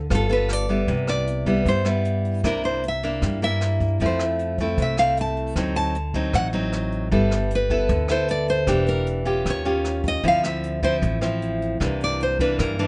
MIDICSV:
0, 0, Header, 1, 5, 480
1, 0, Start_track
1, 0, Tempo, 390371
1, 1081, Time_signature, 4, 2, 24, 8
1, 15829, End_track
2, 0, Start_track
2, 0, Title_t, "Nylon-string guitar"
2, 0, Program_c, 0, 24
2, 183, Note_on_c, 0, 69, 75
2, 386, Note_off_c, 0, 69, 0
2, 400, Note_on_c, 0, 71, 73
2, 648, Note_off_c, 0, 71, 0
2, 648, Note_on_c, 0, 74, 76
2, 1330, Note_off_c, 0, 74, 0
2, 1345, Note_on_c, 0, 74, 75
2, 2003, Note_off_c, 0, 74, 0
2, 2071, Note_on_c, 0, 72, 78
2, 2289, Note_off_c, 0, 72, 0
2, 3032, Note_on_c, 0, 70, 58
2, 3249, Note_off_c, 0, 70, 0
2, 3259, Note_on_c, 0, 72, 64
2, 3482, Note_off_c, 0, 72, 0
2, 3545, Note_on_c, 0, 76, 66
2, 4184, Note_off_c, 0, 76, 0
2, 4228, Note_on_c, 0, 76, 75
2, 4884, Note_off_c, 0, 76, 0
2, 4989, Note_on_c, 0, 72, 55
2, 5188, Note_off_c, 0, 72, 0
2, 5928, Note_on_c, 0, 76, 72
2, 6131, Note_off_c, 0, 76, 0
2, 6136, Note_on_c, 0, 77, 76
2, 6360, Note_off_c, 0, 77, 0
2, 6404, Note_on_c, 0, 81, 76
2, 7053, Note_off_c, 0, 81, 0
2, 7087, Note_on_c, 0, 81, 74
2, 7753, Note_off_c, 0, 81, 0
2, 7812, Note_on_c, 0, 78, 78
2, 7952, Note_off_c, 0, 78, 0
2, 9286, Note_on_c, 0, 71, 74
2, 9933, Note_off_c, 0, 71, 0
2, 9975, Note_on_c, 0, 72, 72
2, 10200, Note_off_c, 0, 72, 0
2, 10215, Note_on_c, 0, 74, 83
2, 10439, Note_off_c, 0, 74, 0
2, 10448, Note_on_c, 0, 72, 83
2, 10890, Note_off_c, 0, 72, 0
2, 10925, Note_on_c, 0, 70, 74
2, 11154, Note_off_c, 0, 70, 0
2, 11684, Note_on_c, 0, 73, 73
2, 12332, Note_off_c, 0, 73, 0
2, 12393, Note_on_c, 0, 75, 88
2, 12609, Note_off_c, 0, 75, 0
2, 12638, Note_on_c, 0, 77, 99
2, 12851, Note_off_c, 0, 77, 0
2, 12857, Note_on_c, 0, 76, 79
2, 13294, Note_off_c, 0, 76, 0
2, 13333, Note_on_c, 0, 72, 84
2, 13472, Note_off_c, 0, 72, 0
2, 14801, Note_on_c, 0, 74, 71
2, 15013, Note_off_c, 0, 74, 0
2, 15035, Note_on_c, 0, 72, 69
2, 15250, Note_off_c, 0, 72, 0
2, 15258, Note_on_c, 0, 71, 71
2, 15481, Note_off_c, 0, 71, 0
2, 15492, Note_on_c, 0, 70, 72
2, 15718, Note_off_c, 0, 70, 0
2, 15730, Note_on_c, 0, 62, 45
2, 15829, Note_off_c, 0, 62, 0
2, 15829, End_track
3, 0, Start_track
3, 0, Title_t, "Nylon-string guitar"
3, 0, Program_c, 1, 24
3, 126, Note_on_c, 1, 55, 52
3, 131, Note_on_c, 1, 59, 43
3, 138, Note_on_c, 1, 65, 50
3, 140, Note_on_c, 1, 69, 45
3, 327, Note_off_c, 1, 59, 0
3, 328, Note_off_c, 1, 65, 0
3, 332, Note_off_c, 1, 69, 0
3, 360, Note_on_c, 1, 59, 57
3, 366, Note_on_c, 1, 65, 57
3, 376, Note_on_c, 1, 69, 69
3, 802, Note_off_c, 1, 59, 0
3, 805, Note_off_c, 1, 65, 0
3, 810, Note_off_c, 1, 69, 0
3, 835, Note_off_c, 1, 55, 0
3, 849, Note_on_c, 1, 55, 45
3, 857, Note_on_c, 1, 59, 46
3, 864, Note_on_c, 1, 64, 56
3, 1085, Note_on_c, 1, 48, 60
3, 1526, Note_off_c, 1, 55, 0
3, 1530, Note_off_c, 1, 59, 0
3, 1534, Note_off_c, 1, 64, 0
3, 1800, Note_on_c, 1, 55, 58
3, 1808, Note_on_c, 1, 59, 64
3, 1813, Note_on_c, 1, 64, 60
3, 2018, Note_off_c, 1, 48, 0
3, 2038, Note_on_c, 1, 43, 45
3, 2242, Note_off_c, 1, 55, 0
3, 2244, Note_off_c, 1, 59, 0
3, 2248, Note_off_c, 1, 64, 0
3, 2273, Note_on_c, 1, 55, 55
3, 2280, Note_on_c, 1, 59, 64
3, 2285, Note_on_c, 1, 64, 66
3, 2958, Note_off_c, 1, 55, 0
3, 2960, Note_off_c, 1, 59, 0
3, 2964, Note_off_c, 1, 64, 0
3, 2975, Note_off_c, 1, 43, 0
3, 3000, Note_on_c, 1, 58, 61
3, 3002, Note_on_c, 1, 48, 56
3, 3006, Note_on_c, 1, 62, 51
3, 3010, Note_on_c, 1, 64, 56
3, 3476, Note_off_c, 1, 58, 0
3, 3478, Note_off_c, 1, 62, 0
3, 3482, Note_off_c, 1, 64, 0
3, 3730, Note_on_c, 1, 58, 58
3, 3740, Note_on_c, 1, 62, 63
3, 3745, Note_on_c, 1, 64, 73
3, 3937, Note_off_c, 1, 48, 0
3, 3971, Note_on_c, 1, 55, 42
3, 4167, Note_off_c, 1, 58, 0
3, 4169, Note_off_c, 1, 62, 0
3, 4174, Note_off_c, 1, 64, 0
3, 4207, Note_on_c, 1, 58, 54
3, 4216, Note_on_c, 1, 62, 58
3, 4222, Note_on_c, 1, 64, 69
3, 4885, Note_off_c, 1, 58, 0
3, 4889, Note_off_c, 1, 62, 0
3, 4892, Note_off_c, 1, 64, 0
3, 4901, Note_off_c, 1, 55, 0
3, 4933, Note_on_c, 1, 53, 50
3, 4933, Note_on_c, 1, 57, 60
3, 4938, Note_on_c, 1, 60, 55
3, 4944, Note_on_c, 1, 64, 63
3, 5606, Note_off_c, 1, 57, 0
3, 5610, Note_off_c, 1, 60, 0
3, 5613, Note_off_c, 1, 64, 0
3, 5662, Note_on_c, 1, 57, 61
3, 5667, Note_on_c, 1, 60, 61
3, 5676, Note_on_c, 1, 64, 68
3, 5863, Note_off_c, 1, 53, 0
3, 5901, Note_on_c, 1, 48, 50
3, 6092, Note_off_c, 1, 57, 0
3, 6095, Note_off_c, 1, 60, 0
3, 6097, Note_off_c, 1, 64, 0
3, 6129, Note_on_c, 1, 57, 58
3, 6139, Note_on_c, 1, 60, 62
3, 6143, Note_on_c, 1, 64, 59
3, 6807, Note_off_c, 1, 57, 0
3, 6809, Note_off_c, 1, 60, 0
3, 6812, Note_off_c, 1, 64, 0
3, 6826, Note_off_c, 1, 48, 0
3, 6843, Note_on_c, 1, 50, 57
3, 6848, Note_on_c, 1, 54, 58
3, 6853, Note_on_c, 1, 60, 58
3, 6854, Note_on_c, 1, 63, 55
3, 7321, Note_off_c, 1, 54, 0
3, 7321, Note_off_c, 1, 60, 0
3, 7321, Note_off_c, 1, 63, 0
3, 7554, Note_on_c, 1, 54, 60
3, 7564, Note_on_c, 1, 60, 65
3, 7568, Note_on_c, 1, 63, 76
3, 7778, Note_off_c, 1, 50, 0
3, 7800, Note_on_c, 1, 45, 49
3, 7998, Note_off_c, 1, 54, 0
3, 8003, Note_off_c, 1, 60, 0
3, 8004, Note_off_c, 1, 63, 0
3, 8027, Note_on_c, 1, 54, 67
3, 8037, Note_on_c, 1, 60, 64
3, 8041, Note_on_c, 1, 63, 76
3, 8714, Note_off_c, 1, 54, 0
3, 8719, Note_off_c, 1, 60, 0
3, 8720, Note_off_c, 1, 63, 0
3, 8735, Note_off_c, 1, 45, 0
3, 8748, Note_on_c, 1, 55, 61
3, 8752, Note_on_c, 1, 59, 54
3, 8754, Note_on_c, 1, 64, 61
3, 8756, Note_on_c, 1, 69, 55
3, 9232, Note_off_c, 1, 59, 0
3, 9232, Note_off_c, 1, 64, 0
3, 9234, Note_off_c, 1, 69, 0
3, 9470, Note_on_c, 1, 59, 58
3, 9477, Note_on_c, 1, 64, 66
3, 9480, Note_on_c, 1, 69, 77
3, 9690, Note_off_c, 1, 55, 0
3, 9712, Note_on_c, 1, 50, 50
3, 9916, Note_off_c, 1, 59, 0
3, 9918, Note_off_c, 1, 64, 0
3, 9921, Note_off_c, 1, 69, 0
3, 9947, Note_on_c, 1, 59, 68
3, 9955, Note_on_c, 1, 64, 55
3, 9958, Note_on_c, 1, 69, 68
3, 10635, Note_off_c, 1, 59, 0
3, 10637, Note_off_c, 1, 64, 0
3, 10640, Note_off_c, 1, 69, 0
3, 10651, Note_off_c, 1, 50, 0
3, 10661, Note_on_c, 1, 52, 58
3, 10667, Note_on_c, 1, 58, 61
3, 10673, Note_on_c, 1, 62, 62
3, 10680, Note_on_c, 1, 67, 75
3, 11354, Note_off_c, 1, 58, 0
3, 11358, Note_off_c, 1, 62, 0
3, 11359, Note_off_c, 1, 67, 0
3, 11378, Note_on_c, 1, 61, 62
3, 11384, Note_on_c, 1, 65, 57
3, 11393, Note_on_c, 1, 67, 64
3, 11605, Note_off_c, 1, 52, 0
3, 11630, Note_on_c, 1, 51, 46
3, 11830, Note_off_c, 1, 61, 0
3, 11832, Note_off_c, 1, 65, 0
3, 11837, Note_off_c, 1, 67, 0
3, 11869, Note_on_c, 1, 61, 62
3, 11876, Note_on_c, 1, 65, 54
3, 11879, Note_on_c, 1, 67, 62
3, 12556, Note_off_c, 1, 61, 0
3, 12556, Note_off_c, 1, 65, 0
3, 12560, Note_off_c, 1, 67, 0
3, 12570, Note_off_c, 1, 51, 0
3, 12585, Note_on_c, 1, 53, 58
3, 12587, Note_on_c, 1, 50, 56
3, 12593, Note_on_c, 1, 60, 61
3, 12601, Note_on_c, 1, 64, 59
3, 13272, Note_off_c, 1, 53, 0
3, 13278, Note_off_c, 1, 60, 0
3, 13280, Note_off_c, 1, 64, 0
3, 13314, Note_on_c, 1, 53, 64
3, 13319, Note_on_c, 1, 60, 60
3, 13320, Note_on_c, 1, 64, 72
3, 13528, Note_off_c, 1, 50, 0
3, 13546, Note_on_c, 1, 45, 46
3, 13758, Note_off_c, 1, 53, 0
3, 13758, Note_off_c, 1, 60, 0
3, 13761, Note_off_c, 1, 64, 0
3, 13787, Note_on_c, 1, 53, 57
3, 13792, Note_on_c, 1, 60, 56
3, 13802, Note_on_c, 1, 64, 67
3, 14474, Note_off_c, 1, 53, 0
3, 14476, Note_off_c, 1, 60, 0
3, 14481, Note_off_c, 1, 64, 0
3, 14488, Note_off_c, 1, 45, 0
3, 14510, Note_on_c, 1, 48, 57
3, 14516, Note_on_c, 1, 52, 49
3, 14524, Note_on_c, 1, 58, 63
3, 14524, Note_on_c, 1, 62, 62
3, 15198, Note_off_c, 1, 52, 0
3, 15198, Note_off_c, 1, 58, 0
3, 15202, Note_off_c, 1, 62, 0
3, 15251, Note_on_c, 1, 52, 65
3, 15254, Note_on_c, 1, 58, 68
3, 15261, Note_on_c, 1, 62, 74
3, 15452, Note_off_c, 1, 48, 0
3, 15498, Note_on_c, 1, 43, 48
3, 15686, Note_off_c, 1, 52, 0
3, 15686, Note_off_c, 1, 58, 0
3, 15691, Note_off_c, 1, 62, 0
3, 15729, Note_on_c, 1, 52, 67
3, 15736, Note_on_c, 1, 58, 64
3, 15736, Note_on_c, 1, 62, 75
3, 15829, Note_off_c, 1, 43, 0
3, 15829, Note_off_c, 1, 52, 0
3, 15829, Note_off_c, 1, 58, 0
3, 15829, Note_off_c, 1, 62, 0
3, 15829, End_track
4, 0, Start_track
4, 0, Title_t, "Upright bass"
4, 0, Program_c, 2, 32
4, 133, Note_on_c, 2, 31, 87
4, 1037, Note_off_c, 2, 31, 0
4, 1085, Note_on_c, 2, 36, 87
4, 1993, Note_off_c, 2, 36, 0
4, 2036, Note_on_c, 2, 43, 79
4, 2949, Note_off_c, 2, 43, 0
4, 3000, Note_on_c, 2, 36, 71
4, 3910, Note_off_c, 2, 36, 0
4, 3961, Note_on_c, 2, 43, 85
4, 4871, Note_off_c, 2, 43, 0
4, 4924, Note_on_c, 2, 41, 80
4, 5832, Note_off_c, 2, 41, 0
4, 5875, Note_on_c, 2, 36, 80
4, 6788, Note_off_c, 2, 36, 0
4, 6833, Note_on_c, 2, 38, 82
4, 7746, Note_off_c, 2, 38, 0
4, 7792, Note_on_c, 2, 33, 83
4, 8706, Note_off_c, 2, 33, 0
4, 8756, Note_on_c, 2, 31, 83
4, 9668, Note_off_c, 2, 31, 0
4, 9704, Note_on_c, 2, 38, 98
4, 10622, Note_off_c, 2, 38, 0
4, 10666, Note_on_c, 2, 28, 83
4, 11583, Note_off_c, 2, 28, 0
4, 11630, Note_on_c, 2, 39, 83
4, 12545, Note_off_c, 2, 39, 0
4, 12592, Note_on_c, 2, 38, 78
4, 13506, Note_off_c, 2, 38, 0
4, 13555, Note_on_c, 2, 33, 86
4, 14467, Note_off_c, 2, 33, 0
4, 14518, Note_on_c, 2, 36, 85
4, 15429, Note_off_c, 2, 36, 0
4, 15481, Note_on_c, 2, 43, 92
4, 15829, Note_off_c, 2, 43, 0
4, 15829, End_track
5, 0, Start_track
5, 0, Title_t, "Drums"
5, 128, Note_on_c, 9, 36, 59
5, 128, Note_on_c, 9, 37, 62
5, 128, Note_on_c, 9, 42, 41
5, 251, Note_off_c, 9, 36, 0
5, 251, Note_off_c, 9, 37, 0
5, 251, Note_off_c, 9, 42, 0
5, 367, Note_on_c, 9, 42, 25
5, 490, Note_off_c, 9, 42, 0
5, 600, Note_on_c, 9, 37, 55
5, 600, Note_on_c, 9, 42, 36
5, 723, Note_off_c, 9, 37, 0
5, 723, Note_off_c, 9, 42, 0
5, 840, Note_on_c, 9, 42, 27
5, 963, Note_off_c, 9, 42, 0
5, 1079, Note_on_c, 9, 42, 43
5, 1080, Note_on_c, 9, 36, 52
5, 1202, Note_off_c, 9, 42, 0
5, 1203, Note_off_c, 9, 36, 0
5, 1321, Note_on_c, 9, 37, 62
5, 1321, Note_on_c, 9, 42, 28
5, 1444, Note_off_c, 9, 37, 0
5, 1444, Note_off_c, 9, 42, 0
5, 1564, Note_on_c, 9, 42, 44
5, 1687, Note_off_c, 9, 42, 0
5, 1797, Note_on_c, 9, 36, 53
5, 1804, Note_on_c, 9, 42, 27
5, 1920, Note_off_c, 9, 36, 0
5, 1927, Note_off_c, 9, 42, 0
5, 2035, Note_on_c, 9, 36, 54
5, 2040, Note_on_c, 9, 42, 46
5, 2158, Note_off_c, 9, 36, 0
5, 2163, Note_off_c, 9, 42, 0
5, 2273, Note_on_c, 9, 37, 49
5, 2273, Note_on_c, 9, 42, 25
5, 2396, Note_off_c, 9, 37, 0
5, 2396, Note_off_c, 9, 42, 0
5, 2517, Note_on_c, 9, 42, 37
5, 2640, Note_off_c, 9, 42, 0
5, 2761, Note_on_c, 9, 42, 27
5, 2884, Note_off_c, 9, 42, 0
5, 2995, Note_on_c, 9, 36, 46
5, 3003, Note_on_c, 9, 37, 56
5, 3003, Note_on_c, 9, 42, 36
5, 3118, Note_off_c, 9, 36, 0
5, 3126, Note_off_c, 9, 37, 0
5, 3126, Note_off_c, 9, 42, 0
5, 3238, Note_on_c, 9, 42, 24
5, 3361, Note_off_c, 9, 42, 0
5, 3485, Note_on_c, 9, 42, 35
5, 3608, Note_off_c, 9, 42, 0
5, 3726, Note_on_c, 9, 42, 24
5, 3849, Note_off_c, 9, 42, 0
5, 3958, Note_on_c, 9, 36, 57
5, 3960, Note_on_c, 9, 37, 53
5, 3960, Note_on_c, 9, 42, 42
5, 4081, Note_off_c, 9, 36, 0
5, 4083, Note_off_c, 9, 37, 0
5, 4083, Note_off_c, 9, 42, 0
5, 4203, Note_on_c, 9, 42, 20
5, 4326, Note_off_c, 9, 42, 0
5, 4437, Note_on_c, 9, 37, 46
5, 4437, Note_on_c, 9, 42, 35
5, 4560, Note_off_c, 9, 37, 0
5, 4560, Note_off_c, 9, 42, 0
5, 4678, Note_on_c, 9, 36, 58
5, 4678, Note_on_c, 9, 42, 26
5, 4801, Note_off_c, 9, 36, 0
5, 4801, Note_off_c, 9, 42, 0
5, 4915, Note_on_c, 9, 42, 38
5, 4917, Note_on_c, 9, 36, 53
5, 5038, Note_off_c, 9, 42, 0
5, 5040, Note_off_c, 9, 36, 0
5, 5157, Note_on_c, 9, 37, 57
5, 5157, Note_on_c, 9, 42, 26
5, 5280, Note_off_c, 9, 37, 0
5, 5280, Note_off_c, 9, 42, 0
5, 5397, Note_on_c, 9, 42, 40
5, 5520, Note_off_c, 9, 42, 0
5, 5633, Note_on_c, 9, 42, 27
5, 5635, Note_on_c, 9, 36, 46
5, 5756, Note_off_c, 9, 42, 0
5, 5758, Note_off_c, 9, 36, 0
5, 5875, Note_on_c, 9, 36, 61
5, 5876, Note_on_c, 9, 42, 46
5, 5998, Note_off_c, 9, 36, 0
5, 5999, Note_off_c, 9, 42, 0
5, 6113, Note_on_c, 9, 37, 50
5, 6113, Note_on_c, 9, 42, 25
5, 6236, Note_off_c, 9, 37, 0
5, 6236, Note_off_c, 9, 42, 0
5, 6356, Note_on_c, 9, 42, 40
5, 6479, Note_off_c, 9, 42, 0
5, 6596, Note_on_c, 9, 42, 26
5, 6719, Note_off_c, 9, 42, 0
5, 6832, Note_on_c, 9, 36, 47
5, 6835, Note_on_c, 9, 37, 59
5, 6835, Note_on_c, 9, 42, 40
5, 6955, Note_off_c, 9, 36, 0
5, 6958, Note_off_c, 9, 37, 0
5, 6958, Note_off_c, 9, 42, 0
5, 7074, Note_on_c, 9, 42, 25
5, 7197, Note_off_c, 9, 42, 0
5, 7313, Note_on_c, 9, 42, 39
5, 7436, Note_off_c, 9, 42, 0
5, 7550, Note_on_c, 9, 36, 51
5, 7551, Note_on_c, 9, 42, 23
5, 7673, Note_off_c, 9, 36, 0
5, 7674, Note_off_c, 9, 42, 0
5, 7789, Note_on_c, 9, 37, 59
5, 7789, Note_on_c, 9, 42, 40
5, 7790, Note_on_c, 9, 36, 60
5, 7912, Note_off_c, 9, 37, 0
5, 7912, Note_off_c, 9, 42, 0
5, 7913, Note_off_c, 9, 36, 0
5, 8031, Note_on_c, 9, 42, 24
5, 8154, Note_off_c, 9, 42, 0
5, 8268, Note_on_c, 9, 37, 46
5, 8268, Note_on_c, 9, 42, 35
5, 8391, Note_off_c, 9, 37, 0
5, 8391, Note_off_c, 9, 42, 0
5, 8511, Note_on_c, 9, 42, 27
5, 8634, Note_off_c, 9, 42, 0
5, 8749, Note_on_c, 9, 36, 57
5, 8751, Note_on_c, 9, 42, 34
5, 8872, Note_off_c, 9, 36, 0
5, 8874, Note_off_c, 9, 42, 0
5, 8990, Note_on_c, 9, 37, 51
5, 8990, Note_on_c, 9, 42, 28
5, 9113, Note_off_c, 9, 37, 0
5, 9113, Note_off_c, 9, 42, 0
5, 9228, Note_on_c, 9, 42, 41
5, 9351, Note_off_c, 9, 42, 0
5, 9464, Note_on_c, 9, 42, 25
5, 9466, Note_on_c, 9, 36, 50
5, 9587, Note_off_c, 9, 42, 0
5, 9589, Note_off_c, 9, 36, 0
5, 9700, Note_on_c, 9, 42, 41
5, 9704, Note_on_c, 9, 36, 55
5, 9823, Note_off_c, 9, 42, 0
5, 9827, Note_off_c, 9, 36, 0
5, 9938, Note_on_c, 9, 37, 59
5, 9938, Note_on_c, 9, 42, 27
5, 10061, Note_off_c, 9, 37, 0
5, 10061, Note_off_c, 9, 42, 0
5, 10182, Note_on_c, 9, 42, 41
5, 10305, Note_off_c, 9, 42, 0
5, 10425, Note_on_c, 9, 42, 29
5, 10548, Note_off_c, 9, 42, 0
5, 10661, Note_on_c, 9, 37, 55
5, 10661, Note_on_c, 9, 42, 40
5, 10662, Note_on_c, 9, 36, 56
5, 10784, Note_off_c, 9, 37, 0
5, 10784, Note_off_c, 9, 42, 0
5, 10785, Note_off_c, 9, 36, 0
5, 10898, Note_on_c, 9, 42, 26
5, 11021, Note_off_c, 9, 42, 0
5, 11143, Note_on_c, 9, 42, 40
5, 11266, Note_off_c, 9, 42, 0
5, 11379, Note_on_c, 9, 42, 24
5, 11502, Note_off_c, 9, 42, 0
5, 11626, Note_on_c, 9, 36, 57
5, 11629, Note_on_c, 9, 37, 60
5, 11629, Note_on_c, 9, 42, 42
5, 11749, Note_off_c, 9, 36, 0
5, 11752, Note_off_c, 9, 37, 0
5, 11752, Note_off_c, 9, 42, 0
5, 11868, Note_on_c, 9, 42, 24
5, 11991, Note_off_c, 9, 42, 0
5, 12105, Note_on_c, 9, 37, 48
5, 12105, Note_on_c, 9, 42, 33
5, 12228, Note_off_c, 9, 37, 0
5, 12228, Note_off_c, 9, 42, 0
5, 12337, Note_on_c, 9, 42, 26
5, 12344, Note_on_c, 9, 36, 53
5, 12460, Note_off_c, 9, 42, 0
5, 12467, Note_off_c, 9, 36, 0
5, 12585, Note_on_c, 9, 42, 35
5, 12588, Note_on_c, 9, 36, 60
5, 12708, Note_off_c, 9, 42, 0
5, 12710, Note_off_c, 9, 36, 0
5, 12832, Note_on_c, 9, 37, 61
5, 12832, Note_on_c, 9, 42, 25
5, 12955, Note_off_c, 9, 37, 0
5, 12955, Note_off_c, 9, 42, 0
5, 13075, Note_on_c, 9, 42, 38
5, 13198, Note_off_c, 9, 42, 0
5, 13312, Note_on_c, 9, 36, 56
5, 13318, Note_on_c, 9, 42, 27
5, 13435, Note_off_c, 9, 36, 0
5, 13441, Note_off_c, 9, 42, 0
5, 13553, Note_on_c, 9, 36, 57
5, 13554, Note_on_c, 9, 42, 43
5, 13676, Note_off_c, 9, 36, 0
5, 13677, Note_off_c, 9, 42, 0
5, 13794, Note_on_c, 9, 37, 53
5, 13794, Note_on_c, 9, 42, 25
5, 13917, Note_off_c, 9, 37, 0
5, 13917, Note_off_c, 9, 42, 0
5, 14041, Note_on_c, 9, 42, 36
5, 14164, Note_off_c, 9, 42, 0
5, 14286, Note_on_c, 9, 42, 28
5, 14409, Note_off_c, 9, 42, 0
5, 14517, Note_on_c, 9, 36, 51
5, 14521, Note_on_c, 9, 37, 55
5, 14521, Note_on_c, 9, 42, 43
5, 14640, Note_off_c, 9, 36, 0
5, 14644, Note_off_c, 9, 37, 0
5, 14644, Note_off_c, 9, 42, 0
5, 14761, Note_on_c, 9, 42, 29
5, 14884, Note_off_c, 9, 42, 0
5, 15003, Note_on_c, 9, 42, 38
5, 15126, Note_off_c, 9, 42, 0
5, 15238, Note_on_c, 9, 36, 57
5, 15245, Note_on_c, 9, 42, 26
5, 15361, Note_off_c, 9, 36, 0
5, 15368, Note_off_c, 9, 42, 0
5, 15478, Note_on_c, 9, 36, 58
5, 15479, Note_on_c, 9, 37, 63
5, 15479, Note_on_c, 9, 42, 41
5, 15601, Note_off_c, 9, 36, 0
5, 15602, Note_off_c, 9, 37, 0
5, 15602, Note_off_c, 9, 42, 0
5, 15723, Note_on_c, 9, 42, 23
5, 15829, Note_off_c, 9, 42, 0
5, 15829, End_track
0, 0, End_of_file